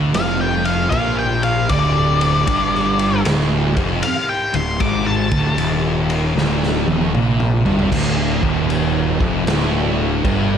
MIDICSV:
0, 0, Header, 1, 5, 480
1, 0, Start_track
1, 0, Key_signature, -1, "minor"
1, 0, Tempo, 777202
1, 1048, Time_signature, 4, 2, 24, 8
1, 6532, End_track
2, 0, Start_track
2, 0, Title_t, "Lead electric guitar"
2, 0, Program_c, 0, 29
2, 95, Note_on_c, 0, 77, 117
2, 246, Note_off_c, 0, 77, 0
2, 254, Note_on_c, 0, 79, 95
2, 404, Note_off_c, 0, 79, 0
2, 406, Note_on_c, 0, 77, 93
2, 551, Note_off_c, 0, 77, 0
2, 558, Note_on_c, 0, 77, 100
2, 718, Note_off_c, 0, 77, 0
2, 733, Note_on_c, 0, 79, 98
2, 886, Note_off_c, 0, 79, 0
2, 888, Note_on_c, 0, 77, 100
2, 1043, Note_off_c, 0, 77, 0
2, 1046, Note_on_c, 0, 74, 103
2, 1984, Note_off_c, 0, 74, 0
2, 2487, Note_on_c, 0, 77, 104
2, 2644, Note_off_c, 0, 77, 0
2, 2650, Note_on_c, 0, 79, 94
2, 2806, Note_off_c, 0, 79, 0
2, 2811, Note_on_c, 0, 84, 99
2, 2966, Note_off_c, 0, 84, 0
2, 2970, Note_on_c, 0, 86, 97
2, 3125, Note_off_c, 0, 86, 0
2, 3130, Note_on_c, 0, 81, 105
2, 3596, Note_off_c, 0, 81, 0
2, 6532, End_track
3, 0, Start_track
3, 0, Title_t, "Distorted electric guitar"
3, 0, Program_c, 1, 30
3, 0, Note_on_c, 1, 50, 102
3, 79, Note_off_c, 1, 50, 0
3, 86, Note_on_c, 1, 41, 120
3, 565, Note_off_c, 1, 41, 0
3, 565, Note_on_c, 1, 46, 111
3, 1042, Note_off_c, 1, 46, 0
3, 1045, Note_on_c, 1, 38, 102
3, 1520, Note_off_c, 1, 38, 0
3, 1523, Note_on_c, 1, 43, 114
3, 2001, Note_off_c, 1, 43, 0
3, 2010, Note_on_c, 1, 38, 116
3, 2317, Note_off_c, 1, 38, 0
3, 2326, Note_on_c, 1, 41, 113
3, 2485, Note_off_c, 1, 41, 0
3, 2806, Note_on_c, 1, 38, 69
3, 2937, Note_off_c, 1, 38, 0
3, 2967, Note_on_c, 1, 44, 107
3, 3275, Note_off_c, 1, 44, 0
3, 3278, Note_on_c, 1, 38, 109
3, 3441, Note_off_c, 1, 38, 0
3, 3444, Note_on_c, 1, 39, 116
3, 3922, Note_off_c, 1, 39, 0
3, 3926, Note_on_c, 1, 38, 117
3, 4234, Note_off_c, 1, 38, 0
3, 4246, Note_on_c, 1, 39, 101
3, 4405, Note_off_c, 1, 39, 0
3, 4411, Note_on_c, 1, 46, 106
3, 4717, Note_off_c, 1, 46, 0
3, 4725, Note_on_c, 1, 43, 101
3, 4884, Note_off_c, 1, 43, 0
3, 4888, Note_on_c, 1, 38, 115
3, 5206, Note_off_c, 1, 38, 0
3, 5206, Note_on_c, 1, 39, 97
3, 5675, Note_off_c, 1, 39, 0
3, 5685, Note_on_c, 1, 41, 103
3, 5843, Note_off_c, 1, 41, 0
3, 5848, Note_on_c, 1, 38, 118
3, 6322, Note_off_c, 1, 38, 0
3, 6325, Note_on_c, 1, 43, 110
3, 6532, Note_off_c, 1, 43, 0
3, 6532, End_track
4, 0, Start_track
4, 0, Title_t, "Picked electric bass"
4, 0, Program_c, 2, 34
4, 0, Note_on_c, 2, 38, 103
4, 74, Note_off_c, 2, 38, 0
4, 84, Note_on_c, 2, 29, 92
4, 541, Note_off_c, 2, 29, 0
4, 569, Note_on_c, 2, 34, 90
4, 1024, Note_off_c, 2, 34, 0
4, 1048, Note_on_c, 2, 26, 98
4, 1504, Note_off_c, 2, 26, 0
4, 1530, Note_on_c, 2, 31, 98
4, 1986, Note_off_c, 2, 31, 0
4, 2007, Note_on_c, 2, 26, 97
4, 2302, Note_off_c, 2, 26, 0
4, 2325, Note_on_c, 2, 29, 92
4, 2478, Note_off_c, 2, 29, 0
4, 2803, Note_on_c, 2, 26, 88
4, 2957, Note_off_c, 2, 26, 0
4, 2969, Note_on_c, 2, 32, 103
4, 3264, Note_off_c, 2, 32, 0
4, 3284, Note_on_c, 2, 26, 85
4, 3438, Note_off_c, 2, 26, 0
4, 3448, Note_on_c, 2, 27, 96
4, 3904, Note_off_c, 2, 27, 0
4, 3924, Note_on_c, 2, 26, 93
4, 4221, Note_off_c, 2, 26, 0
4, 4243, Note_on_c, 2, 27, 100
4, 4397, Note_off_c, 2, 27, 0
4, 4405, Note_on_c, 2, 34, 98
4, 4701, Note_off_c, 2, 34, 0
4, 4722, Note_on_c, 2, 31, 102
4, 4876, Note_off_c, 2, 31, 0
4, 4891, Note_on_c, 2, 26, 94
4, 5184, Note_off_c, 2, 26, 0
4, 5205, Note_on_c, 2, 27, 88
4, 5660, Note_off_c, 2, 27, 0
4, 5684, Note_on_c, 2, 29, 103
4, 5836, Note_off_c, 2, 29, 0
4, 5849, Note_on_c, 2, 26, 94
4, 6303, Note_off_c, 2, 26, 0
4, 6327, Note_on_c, 2, 31, 92
4, 6532, Note_off_c, 2, 31, 0
4, 6532, End_track
5, 0, Start_track
5, 0, Title_t, "Drums"
5, 88, Note_on_c, 9, 51, 97
5, 95, Note_on_c, 9, 38, 117
5, 150, Note_off_c, 9, 51, 0
5, 157, Note_off_c, 9, 38, 0
5, 403, Note_on_c, 9, 51, 77
5, 465, Note_off_c, 9, 51, 0
5, 569, Note_on_c, 9, 36, 107
5, 569, Note_on_c, 9, 51, 104
5, 631, Note_off_c, 9, 36, 0
5, 631, Note_off_c, 9, 51, 0
5, 883, Note_on_c, 9, 51, 77
5, 945, Note_off_c, 9, 51, 0
5, 1046, Note_on_c, 9, 51, 101
5, 1049, Note_on_c, 9, 36, 108
5, 1108, Note_off_c, 9, 51, 0
5, 1111, Note_off_c, 9, 36, 0
5, 1366, Note_on_c, 9, 51, 79
5, 1427, Note_off_c, 9, 51, 0
5, 1528, Note_on_c, 9, 51, 104
5, 1530, Note_on_c, 9, 36, 104
5, 1589, Note_off_c, 9, 51, 0
5, 1592, Note_off_c, 9, 36, 0
5, 1695, Note_on_c, 9, 38, 34
5, 1757, Note_off_c, 9, 38, 0
5, 1848, Note_on_c, 9, 51, 78
5, 1910, Note_off_c, 9, 51, 0
5, 2009, Note_on_c, 9, 51, 106
5, 2015, Note_on_c, 9, 38, 116
5, 2070, Note_off_c, 9, 51, 0
5, 2077, Note_off_c, 9, 38, 0
5, 2326, Note_on_c, 9, 36, 117
5, 2326, Note_on_c, 9, 51, 81
5, 2388, Note_off_c, 9, 36, 0
5, 2388, Note_off_c, 9, 51, 0
5, 2487, Note_on_c, 9, 51, 107
5, 2549, Note_off_c, 9, 51, 0
5, 2802, Note_on_c, 9, 51, 82
5, 2864, Note_off_c, 9, 51, 0
5, 2965, Note_on_c, 9, 51, 97
5, 2968, Note_on_c, 9, 36, 103
5, 3027, Note_off_c, 9, 51, 0
5, 3030, Note_off_c, 9, 36, 0
5, 3282, Note_on_c, 9, 51, 77
5, 3285, Note_on_c, 9, 36, 109
5, 3344, Note_off_c, 9, 51, 0
5, 3346, Note_off_c, 9, 36, 0
5, 3446, Note_on_c, 9, 51, 95
5, 3508, Note_off_c, 9, 51, 0
5, 3766, Note_on_c, 9, 51, 73
5, 3827, Note_off_c, 9, 51, 0
5, 3938, Note_on_c, 9, 38, 70
5, 4000, Note_off_c, 9, 38, 0
5, 4096, Note_on_c, 9, 38, 61
5, 4158, Note_off_c, 9, 38, 0
5, 4247, Note_on_c, 9, 48, 77
5, 4309, Note_off_c, 9, 48, 0
5, 4330, Note_on_c, 9, 48, 71
5, 4392, Note_off_c, 9, 48, 0
5, 4413, Note_on_c, 9, 47, 93
5, 4475, Note_off_c, 9, 47, 0
5, 4571, Note_on_c, 9, 45, 90
5, 4632, Note_off_c, 9, 45, 0
5, 4730, Note_on_c, 9, 43, 106
5, 4792, Note_off_c, 9, 43, 0
5, 4811, Note_on_c, 9, 43, 95
5, 4873, Note_off_c, 9, 43, 0
5, 4891, Note_on_c, 9, 36, 110
5, 4893, Note_on_c, 9, 49, 127
5, 4893, Note_on_c, 9, 57, 67
5, 4952, Note_off_c, 9, 36, 0
5, 4955, Note_off_c, 9, 49, 0
5, 4955, Note_off_c, 9, 57, 0
5, 5206, Note_on_c, 9, 36, 114
5, 5268, Note_off_c, 9, 36, 0
5, 5372, Note_on_c, 9, 57, 69
5, 5434, Note_off_c, 9, 57, 0
5, 5685, Note_on_c, 9, 36, 114
5, 5747, Note_off_c, 9, 36, 0
5, 5850, Note_on_c, 9, 57, 68
5, 5857, Note_on_c, 9, 38, 112
5, 5912, Note_off_c, 9, 57, 0
5, 5918, Note_off_c, 9, 38, 0
5, 6328, Note_on_c, 9, 36, 114
5, 6328, Note_on_c, 9, 57, 66
5, 6390, Note_off_c, 9, 36, 0
5, 6390, Note_off_c, 9, 57, 0
5, 6532, End_track
0, 0, End_of_file